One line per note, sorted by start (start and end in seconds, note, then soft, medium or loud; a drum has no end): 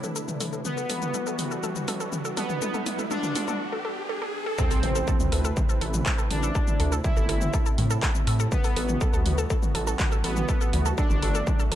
0.00 0.12 A2 medium
0.00 0.61 C3 medium
0.00 0.61 A3 medium
0.00 0.63 D4 medium
0.00 0.13 A4 medium
0.00 2.58 B4 medium
0.00 mid tom medium
0.00 riser medium
0.00 shaker soft
0.16 0.21 A4 medium
0.16 shaker medium
0.28 mid tom medium
0.28 shaker soft
0.40 0.61 A2 loud
0.40 0.50 A4 medium
0.40 open hi-hat loud
0.40 mid tom medium
0.40 shaker medium
0.53 0.58 A4 medium
0.53 shaker soft
0.65 3.57 E3 medium
0.65 3.57 G3 medium
0.65 1.54 B3 loud
0.65 3.57 F#4 medium
0.65 mid tom medium
0.65 shaker medium
0.77 0.87 A4 medium
0.77 shaker soft
0.90 1.10 A1 loud
0.90 0.95 A4 medium
0.90 open hi-hat loud
0.90 mid tom medium
0.90 shaker medium
1.02 mid tom medium
1.02 shaker soft
1.14 1.24 A4 medium
1.14 mid tom medium
1.14 shaker medium
1.27 1.37 D2 medium
1.27 1.32 A4 medium
1.27 shaker soft
1.39 1.59 D2 medium
1.39 open hi-hat loud
1.39 mid tom medium
1.39 shaker medium
1.51 1.60 A4 medium
1.51 shaker soft
1.63 1.69 A4 medium
1.63 mid tom medium
1.63 shaker medium
1.76 mid tom medium
1.76 shaker soft
1.88 2.08 A1 loud
1.88 1.97 A4 medium
1.88 open hi-hat loud
1.88 mid tom medium
1.88 shaker medium
2.00 2.06 A4 medium
2.00 shaker soft
2.13 mid tom medium
2.13 shaker medium
2.25 2.34 A4 medium
2.25 shaker soft
2.37 2.58 A1 medium
2.37 3.01 B3 loud
2.37 2.43 A4 medium
2.37 open hi-hat loud
2.37 mid tom medium
2.37 shaker medium
2.50 mid tom medium
2.50 shaker soft
2.62 3.59 A3 medium
2.62 2.71 A4 medium
2.62 mid tom medium
2.62 shaker medium
2.74 2.80 A4 medium
2.74 mid tom medium
2.74 shaker soft
2.86 3.07 D2 medium
2.86 open hi-hat loud
2.86 mid tom medium
2.86 shaker medium
2.99 3.08 A4 medium
2.99 mid tom medium
2.99 shaker soft
3.11 3.60 D4 loud
3.11 3.17 A4 medium
3.11 mid tom medium
3.11 shaker medium
3.23 3.33 G1 loud
3.23 mid tom medium
3.23 shaker soft
3.35 3.56 G1 loud
3.35 3.45 A4 medium
3.35 open hi-hat loud
3.35 mid tom loud
3.35 shaker medium
3.48 3.53 A4 medium
3.48 mid tom medium
3.48 shaker soft
3.72 3.82 A4 medium
3.85 3.90 A4 medium
4.09 4.19 A4 medium
4.22 4.27 A4 medium
4.46 4.56 A4 medium
4.58 8.48 C3 medium
4.58 8.48 A3 medium
4.58 5.47 C4 loud
4.58 8.48 E4 medium
4.58 4.68 A4 medium
4.58 6.53 B4 medium
4.58 4.68 A5 medium
4.58 kick loud
4.58 impact medium
4.58 shaker medium
4.71 4.80 A4 medium
4.71 4.80 A5 medium
4.71 open hi-hat medium
4.71 shaker medium
4.83 5.03 A1 loud
4.83 open hi-hat loud
4.83 mid tom medium
4.95 5.05 A4 medium
4.95 5.05 A5 medium
4.95 shaker medium
5.08 5.17 A4 medium
5.08 5.17 A5 medium
5.08 kick loud
5.08 shaker medium
5.20 5.30 D2 medium
5.20 mid tom medium
5.20 shaker medium
5.32 5.53 D2 medium
5.32 5.42 A4 medium
5.32 5.42 A5 medium
5.32 open hi-hat loud
5.45 5.54 A4 medium
5.45 5.54 A5 medium
5.45 shaker medium
5.57 kick loud
5.57 mid tom loud
5.57 shaker medium
5.69 5.78 A4 medium
5.69 5.78 A5 medium
5.69 shaker medium
5.81 6.02 A1 loud
5.81 5.91 A4 medium
5.81 5.91 A5 medium
5.81 open hi-hat loud
5.94 mid tom loud
5.94 shaker medium
6.06 6.15 A4 medium
6.06 6.15 A5 medium
6.06 kick loud
6.06 clap loud
6.06 shaker medium
6.18 6.28 A4 medium
6.18 6.28 A5 medium
6.18 shaker medium
6.31 6.51 A1 medium
6.31 6.95 D4 loud
6.31 open hi-hat loud
6.31 mid tom medium
6.43 6.52 A4 medium
6.43 6.52 A5 medium
6.43 shaker medium
6.55 8.50 C4 medium
6.55 6.65 A4 medium
6.55 6.65 A5 medium
6.55 kick loud
6.55 shaker medium
6.68 mid tom medium
6.68 shaker medium
6.80 7.00 D2 medium
6.80 6.89 A4 medium
6.80 6.89 A5 medium
6.80 open hi-hat loud
6.92 7.01 A4 medium
6.92 7.01 A5 medium
6.92 shaker medium
7.04 7.68 E4 loud
7.04 kick loud
7.04 mid tom medium
7.04 shaker medium
7.17 7.27 G1 loud
7.17 7.26 A4 medium
7.17 7.26 A5 medium
7.17 shaker medium
7.29 7.49 G1 loud
7.29 7.38 A4 medium
7.29 7.38 A5 medium
7.29 open hi-hat loud
7.41 mid tom medium
7.41 shaker medium
7.54 7.63 A4 medium
7.54 7.63 A5 medium
7.54 kick loud
7.54 shaker medium
7.66 7.75 A4 medium
7.66 7.75 A5 medium
7.66 shaker medium
7.78 7.98 A2 medium
7.78 open hi-hat loud
7.78 mid tom medium
7.90 8.00 A4 medium
7.90 8.00 A5 medium
7.90 shaker medium
8.03 8.12 A4 medium
8.03 8.12 A5 medium
8.03 kick loud
8.03 clap loud
8.03 shaker medium
8.15 mid tom medium
8.15 shaker medium
8.27 8.48 A2 loud
8.27 8.37 A4 medium
8.27 8.37 A5 medium
8.27 open hi-hat loud
8.40 8.49 A4 medium
8.40 8.49 A5 medium
8.40 shaker medium
8.52 11.75 E3 medium
8.52 11.75 G3 medium
8.52 9.41 B3 loud
8.52 10.47 B3 medium
8.52 11.75 F#4 medium
8.52 kick loud
8.52 mid tom medium
8.52 shaker medium
8.64 8.74 A4 medium
8.64 8.74 A5 medium
8.64 open hi-hat medium
8.64 shaker medium
8.76 8.97 A1 loud
8.76 8.86 A4 medium
8.76 8.86 A5 medium
8.76 open hi-hat loud
8.89 mid tom medium
8.89 shaker medium
9.01 9.10 A4 medium
9.01 9.10 A5 medium
9.01 kick loud
9.01 shaker medium
9.13 9.24 D2 medium
9.13 9.23 A4 medium
9.13 9.23 A5 medium
9.13 shaker medium
9.26 9.46 D2 medium
9.26 open hi-hat loud
9.26 mid tom medium
9.38 9.47 A4 medium
9.38 9.47 A5 medium
9.38 shaker medium
9.50 9.60 A4 medium
9.50 9.60 A5 medium
9.50 kick loud
9.50 shaker medium
9.63 mid tom medium
9.63 shaker medium
9.75 9.95 A1 loud
9.75 9.84 A4 medium
9.75 9.84 A5 medium
9.75 open hi-hat loud
9.87 9.96 A4 medium
9.87 9.96 A5 medium
9.87 shaker medium
9.99 kick loud
9.99 clap loud
9.99 mid tom medium
9.99 shaker medium
10.12 10.21 A4 medium
10.12 10.21 A5 medium
10.12 shaker medium
10.24 10.44 A1 medium
10.24 10.88 B3 loud
10.24 10.33 A4 medium
10.24 10.33 A5 medium
10.24 open hi-hat loud
10.36 mid tom medium
10.36 shaker medium
10.49 11.75 A3 medium
10.49 10.58 A4 medium
10.49 10.58 A5 medium
10.49 kick loud
10.49 shaker medium
10.61 10.70 A4 medium
10.61 10.70 A5 medium
10.61 shaker medium
10.73 10.94 D2 medium
10.73 open hi-hat loud
10.73 mid tom medium
10.86 10.95 A4 medium
10.86 10.95 A5 medium
10.86 shaker medium
10.98 11.62 D4 loud
10.98 11.07 A4 medium
10.98 11.07 A5 medium
10.98 kick loud
10.98 shaker medium
11.10 11.20 G1 loud
11.10 mid tom medium
11.10 shaker medium
11.22 11.43 G1 loud
11.22 11.32 A4 medium
11.22 11.32 A5 medium
11.22 open hi-hat loud
11.35 11.44 A4 medium
11.35 11.44 A5 medium
11.35 shaker medium
11.47 kick loud
11.47 mid tom medium
11.47 shaker medium
11.59 11.69 A4 medium
11.59 11.69 A5 medium
11.59 shaker medium
11.72 11.75 A1 medium
11.72 11.75 A4 medium
11.72 11.75 A5 medium
11.72 open hi-hat loud